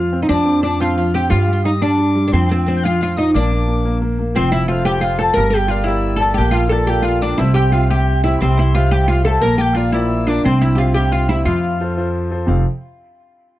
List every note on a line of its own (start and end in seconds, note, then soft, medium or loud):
0.00 0.28 F2 medium
0.00 0.12 F3 medium
0.00 0.22 F4 loud
0.00 0.20 F6 medium
0.13 0.29 C4 medium
0.22 0.28 D#4 medium
0.29 1.29 F2 medium
0.29 0.62 F3 medium
0.29 0.62 D4 loud
0.29 0.63 D4 medium
0.29 0.61 D6 medium
0.45 0.62 C4 medium
0.63 0.80 F3 medium
0.63 0.81 D4 medium
0.63 0.82 D6 medium
0.80 0.97 C4 medium
0.80 0.96 F4 medium
0.80 1.13 F4 medium
0.80 0.86 G6 medium
0.85 1.16 F6 medium
0.97 1.14 F3 medium
0.97 1.13 F4 medium
1.14 1.31 C4 medium
1.14 1.30 G4 medium
1.14 1.29 G4 loud
1.14 1.32 G6 medium
1.30 2.31 G2 medium
1.30 1.46 G3 medium
1.30 1.62 F4 loud
1.30 1.41 F4 medium
1.30 1.63 F6 medium
1.42 1.51 F4 medium
1.47 1.63 G3 medium
1.53 1.64 F4 medium
1.64 1.80 G3 medium
1.64 1.70 D#4 medium
1.64 1.81 D#4 medium
1.64 1.83 D#6 medium
1.81 1.96 G3 medium
1.81 2.27 D4 medium
1.81 2.30 D4 medium
1.81 2.34 D6 medium
1.97 2.14 G3 medium
2.15 2.32 G3 medium
2.28 2.32 D4 medium
2.32 3.32 F2 medium
2.32 2.47 F3 medium
2.32 2.50 C4 loud
2.32 2.48 C4 medium
2.32 2.50 C6 medium
2.48 2.65 F3 medium
2.48 2.65 C4 medium
2.48 2.67 C4 medium
2.66 2.82 F3 medium
2.66 2.84 C4 medium
2.66 2.85 C4 medium
2.77 2.85 G6 medium
2.84 2.99 F3 medium
2.84 2.99 F4 medium
2.84 3.01 F4 loud
2.84 3.12 F6 medium
3.00 3.16 F3 medium
3.00 3.17 F4 medium
3.12 3.18 F6 medium
3.17 3.34 F3 medium
3.17 3.34 D#4 medium
3.17 3.33 D#6 medium
3.34 4.34 A#1 medium
3.34 3.51 A#3 medium
3.34 3.98 D4 medium
3.34 3.99 D4 medium
3.34 3.98 D6 medium
3.52 3.66 A#3 medium
3.68 3.84 A#3 medium
3.85 4.00 A#3 medium
4.02 4.18 A#3 medium
4.19 4.35 A#3 medium
4.35 5.35 F1 medium
4.35 5.34 F3 medium
4.35 4.51 C4 medium
4.35 4.51 C4 loud
4.35 4.52 C6 medium
4.52 4.68 E4 medium
4.52 4.68 E4 loud
4.52 4.69 E6 medium
4.68 4.83 F4 medium
4.68 4.85 F4 medium
4.68 4.84 A4 soft
4.68 4.85 C5 medium
4.68 4.88 F6 medium
4.85 5.18 F4 medium
4.85 5.01 G4 loud
4.85 5.02 G4 medium
4.85 5.18 A4 medium
4.85 5.18 C5 medium
4.85 5.06 G6 medium
5.01 5.18 F4 loud
5.01 5.19 F4 medium
5.01 5.21 F6 medium
5.19 5.36 F4 medium
5.19 5.33 A4 loud
5.19 5.36 A4 soft
5.19 5.36 A4 medium
5.19 5.37 C5 medium
5.19 5.39 A6 loud
5.34 6.37 G1 medium
5.34 6.36 G3 medium
5.34 5.50 A#4 loud
5.34 5.53 A#4 loud
5.34 5.55 A#6 loud
5.50 5.68 G4 loud
5.50 5.70 G4 medium
5.50 5.72 G6 medium
5.68 5.87 F4 medium
5.68 5.88 F4 medium
5.68 5.85 G4 medium
5.68 5.86 A#4 soft
5.68 5.86 D5 medium
5.68 5.88 F6 medium
5.84 6.21 E4 loud
5.84 6.18 G4 medium
5.84 6.19 A#4 medium
5.84 6.19 D5 medium
5.84 6.20 E6 medium
5.88 6.20 E4 medium
6.16 6.37 G4 medium
6.16 6.34 A4 loud
6.16 6.37 A#4 soft
6.21 6.38 A4 medium
6.21 6.38 D5 medium
6.21 6.39 A6 medium
6.34 7.37 A#3 medium
6.34 6.51 G4 loud
6.34 6.54 G4 loud
6.34 6.56 G6 loud
6.38 7.38 A#1 medium
6.51 6.69 F4 loud
6.51 6.71 F4 medium
6.51 6.74 F6 medium
6.69 6.87 F4 medium
6.69 6.87 A4 loud
6.69 6.89 A4 medium
6.69 6.88 A#4 soft
6.69 6.88 D5 medium
6.69 6.91 A6 medium
6.87 7.21 F4 medium
6.87 7.02 G4 loud
6.87 7.04 G4 medium
6.87 7.21 A#4 medium
6.87 7.21 D5 medium
6.87 7.07 G6 medium
7.02 7.20 F4 loud
7.02 7.21 F4 medium
7.02 7.24 F6 medium
7.21 7.37 D4 medium
7.21 7.40 D4 medium
7.21 7.39 F4 medium
7.21 7.39 A#4 medium
7.21 7.40 D5 medium
7.21 7.41 D6 medium
7.38 8.39 C2 medium
7.38 8.38 C4 medium
7.38 7.54 E4 loud
7.38 7.55 E4 medium
7.38 7.58 E6 medium
7.54 7.71 G4 loud
7.54 7.72 G4 medium
7.54 7.75 G6 medium
7.72 7.90 F4 medium
7.72 7.91 F4 medium
7.72 7.89 G4 soft
7.72 7.90 C5 soft
7.72 7.90 E5 medium
7.72 7.92 F6 medium
7.90 8.23 G4 loud
7.90 8.24 G4 medium
7.90 8.23 G4 medium
7.90 8.24 C5 soft
7.90 8.24 E5 medium
7.90 8.24 G6 medium
8.23 8.42 E4 medium
8.23 8.41 E4 medium
8.23 8.58 G4 medium
8.23 8.58 C5 soft
8.23 8.58 E5 medium
8.23 8.43 E6 medium
8.41 9.41 C2 medium
8.41 9.41 G3 medium
8.41 8.57 C4 medium
8.41 8.58 C4 loud
8.41 8.77 C6 medium
8.57 8.74 E4 medium
8.75 8.91 F4 medium
8.75 8.93 F4 medium
8.75 8.90 G4 medium
8.75 8.90 C5 soft
8.75 8.91 E5 medium
8.75 8.94 F6 medium
8.91 9.07 G4 loud
8.91 9.24 G4 medium
8.91 9.09 G4 medium
8.91 9.24 C5 medium
8.91 9.25 E5 medium
8.91 9.09 G6 medium
9.08 9.24 F4 medium
9.08 9.27 F4 medium
9.08 9.25 F6 medium
9.25 9.42 G4 medium
9.25 9.41 A4 loud
9.25 9.43 A4 medium
9.25 9.43 C5 medium
9.25 9.43 E5 medium
9.25 9.41 A6 medium
9.41 10.43 A#1 medium
9.41 10.42 A#3 medium
9.41 9.58 A#4 loud
9.41 9.59 A#4 medium
9.41 9.63 A#6 medium
9.58 9.75 G4 loud
9.58 9.76 G4 medium
9.58 9.78 G6 medium
9.74 9.92 F4 medium
9.74 10.09 F4 medium
9.74 9.94 F4 medium
9.74 9.92 A#4 soft
9.74 9.93 D5 medium
9.74 9.95 F6 medium
9.92 10.26 F3 medium
9.92 10.26 E4 loud
9.92 10.26 E4 medium
9.92 10.26 A#4 medium
9.92 10.27 D5 medium
9.92 10.30 E6 medium
10.27 10.45 D4 medium
10.27 10.46 D4 medium
10.27 10.44 F4 medium
10.27 10.44 A#4 medium
10.27 10.44 D5 medium
10.27 10.45 D6 medium
10.44 11.44 C2 medium
10.44 11.43 C4 medium
10.44 10.62 C4 loud
10.44 10.61 C4 medium
10.44 10.61 C6 medium
10.61 10.75 E4 medium
10.61 10.78 E4 medium
10.61 10.77 E6 medium
10.75 10.96 F4 medium
10.75 10.95 F4 medium
10.75 10.79 G4 medium
10.75 10.93 G4 medium
10.75 10.93 C5 soft
10.75 10.93 E5 medium
10.94 11.26 G4 medium
10.94 11.12 G4 loud
10.94 11.11 G4 medium
10.94 11.27 C5 medium
10.94 11.28 E5 medium
10.94 11.14 G6 medium
11.12 11.28 F4 medium
11.12 11.32 F6 medium
11.28 11.45 E4 medium
11.28 11.45 G4 medium
11.28 11.45 C5 soft
11.28 11.46 E5 medium
11.28 11.45 E6 medium
11.45 12.45 F2 medium
11.45 12.45 F3 medium
11.45 12.09 F4 medium
11.45 12.10 F6 medium
11.80 11.96 F4 medium
11.80 11.96 A4 soft
11.80 11.96 C5 medium
11.97 12.29 F4 medium
11.97 12.30 A4 medium
11.97 12.30 C5 medium
12.31 12.47 F4 soft
12.31 12.46 A4 soft
12.31 12.48 C5 medium
12.46 12.64 F1 loud
12.46 12.63 F2 medium
12.46 12.63 C3 medium
12.46 12.63 F3 medium
12.46 12.63 C4 medium
12.46 12.63 A4 medium
12.46 12.64 F5 medium